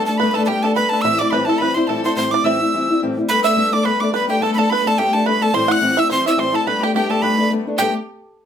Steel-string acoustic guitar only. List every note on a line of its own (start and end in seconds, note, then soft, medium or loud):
0.09 0.20 A3 soft
0.09 0.20 B3 soft
0.09 0.20 D4 medium
0.21 0.36 G3 medium
0.21 0.36 A3 medium
0.21 0.36 B3 medium
0.21 0.35 D4 loud
0.37 0.48 A3 soft
0.37 0.48 B3 medium
0.37 0.48 D4 medium
0.48 0.63 G3 medium
0.48 0.64 A3 medium
0.48 0.64 B3 medium
0.48 0.63 D4 medium
0.64 0.75 A3 medium
0.64 0.75 B3 medium
0.64 0.76 D4 medium
0.75 0.91 G3 medium
0.75 0.92 A3 medium
0.75 0.92 B3 medium
0.75 0.90 D4 medium
0.92 1.04 A3 soft
0.92 1.04 B3 soft
0.92 1.04 D4 soft
1.03 1.19 A2 medium
1.03 1.20 E3 medium
1.03 1.20 G3 medium
1.03 1.20 C4 medium
1.03 1.20 E4 medium
1.21 1.31 G3 soft
1.21 1.31 C4 medium
1.21 1.32 E4 soft
1.31 1.47 A2 medium
1.31 1.48 E3 medium
1.31 1.48 G3 medium
1.31 1.47 C4 medium
1.31 1.46 E4 medium
1.47 1.60 G3 soft
1.47 1.60 C4 medium
1.47 1.60 E4 medium
1.59 1.75 E3 medium
1.59 1.76 G3 medium
1.59 1.75 C4 medium
1.59 1.74 E4 medium
1.75 1.87 G3 medium
1.75 1.87 C4 medium
1.75 1.88 E4 medium
1.88 2.04 A2 medium
1.88 2.04 E3 medium
1.88 2.04 G3 medium
1.88 2.04 C4 medium
1.88 2.03 E4 loud
2.04 2.16 G3 soft
2.04 2.16 C4 soft
2.04 2.16 E4 medium
2.16 2.32 A2 medium
2.16 2.32 E3 medium
2.16 2.32 G3 medium
2.16 2.31 C4 medium
2.16 2.30 E4 medium
2.31 2.43 G3 soft
2.31 2.43 C4 medium
2.31 2.44 E4 medium
2.44 2.60 A2 medium
2.44 2.60 E3 medium
2.44 2.60 G3 medium
2.44 2.60 C4 medium
2.44 2.59 E4 medium
2.60 2.73 G3 soft
2.60 2.73 C4 soft
2.60 2.73 E4 medium
2.74 2.89 E3 medium
2.74 2.89 G3 medium
2.74 2.90 C4 medium
2.74 2.89 E4 medium
2.90 3.02 G3 medium
2.90 3.02 C4 medium
2.90 3.02 E4 medium
3.02 3.17 A2 medium
3.02 3.18 E3 medium
3.02 3.18 G3 medium
3.02 3.18 C4 loud
3.02 3.17 E4 medium
3.18 3.28 G3 medium
3.18 3.30 C4 soft
3.18 3.30 E4 medium
3.30 3.45 G3 medium
3.30 3.46 A3 medium
3.30 3.46 B3 medium
3.30 3.45 D4 medium
3.46 3.55 A3 soft
3.46 3.56 B3 medium
3.46 3.57 D4 medium
3.57 3.73 G3 medium
3.57 3.73 A3 medium
3.57 3.73 B3 medium
3.57 3.72 D4 medium
3.73 3.85 A3 soft
3.73 3.85 B3 medium
3.73 3.85 D4 medium
3.85 4.01 G3 medium
3.85 4.01 A3 medium
3.85 4.01 B3 medium
3.85 4.00 D4 medium
4.01 4.11 A3 medium
4.01 4.12 B3 medium
4.01 4.13 D4 medium
4.13 4.29 G3 medium
4.13 4.29 A3 medium
4.13 4.28 B3 medium
4.13 4.27 D4 medium
4.28 4.40 A3 soft
4.28 4.40 B3 soft
4.28 4.40 D4 medium
4.40 4.57 G3 medium
4.40 4.57 A3 medium
4.40 4.57 B3 medium
4.40 4.56 D4 medium
4.57 4.70 A3 soft
4.57 4.70 B3 medium
4.57 4.69 D4 medium
4.71 4.86 G3 medium
4.71 4.86 A3 medium
4.71 4.85 B3 loud
4.71 4.84 D4 medium
4.85 4.97 A3 soft
4.85 4.98 B3 medium
4.85 4.98 D4 medium
4.98 5.14 G3 medium
4.98 5.14 A3 medium
4.98 5.14 B3 medium
4.98 5.12 D4 medium
5.14 5.26 A3 soft
5.14 5.27 B3 medium
5.14 5.26 D4 medium
5.27 5.42 G3 medium
5.27 5.42 A3 medium
5.27 5.42 B3 medium
5.27 5.41 D4 medium
5.42 5.53 A3 soft
5.42 5.53 B3 soft
5.42 5.54 D4 medium
5.53 5.69 A2 medium
5.53 5.69 E3 medium
5.53 5.70 G3 loud
5.53 5.69 C4 medium
5.53 5.67 E4 medium
5.68 5.80 G3 soft
5.68 5.81 C4 medium
5.68 5.81 E4 medium
5.81 5.97 A2 medium
5.81 5.97 E3 medium
5.81 5.97 G3 medium
5.81 5.97 C4 medium
5.81 5.97 E4 medium
5.98 6.11 G3 medium
5.98 6.10 C4 medium
5.98 6.10 E4 medium
6.11 6.26 E3 medium
6.11 6.27 G3 medium
6.11 6.26 C4 medium
6.11 6.25 E4 medium
6.26 6.36 G3 medium
6.26 6.37 C4 medium
6.26 6.38 E4 medium
6.37 6.54 A2 medium
6.37 6.54 E3 medium
6.37 6.54 G3 medium
6.37 6.53 C4 medium
6.37 6.52 E4 medium
6.53 6.66 G3 medium
6.53 6.67 C4 medium
6.53 6.66 E4 medium
6.67 6.82 G3 medium
6.67 6.83 A3 medium
6.67 6.82 B3 medium
6.67 6.81 D4 medium
6.82 6.94 A3 medium
6.82 6.94 B3 medium
6.82 6.95 D4 soft
6.94 7.10 G3 medium
6.94 7.11 A3 medium
6.94 7.10 B3 medium
6.94 7.09 D4 loud
7.10 7.22 A3 medium
7.10 7.22 B3 soft
7.10 7.22 D4 medium
7.22 7.38 G3 medium
7.22 7.39 A3 medium
7.22 7.38 B3 medium
7.22 7.37 D4 medium
7.38 7.51 A3 medium
7.38 7.51 B3 medium
7.38 7.51 D4 medium
7.52 7.67 G3 medium
7.52 7.67 A3 medium
7.52 7.67 B3 medium
7.52 7.66 D4 medium
7.67 7.79 A3 soft
7.67 7.79 B3 medium
7.67 7.79 D4 medium
7.79 7.92 G3 medium
7.79 7.92 A3 medium
7.79 7.92 B3 medium
7.79 7.93 D4 medium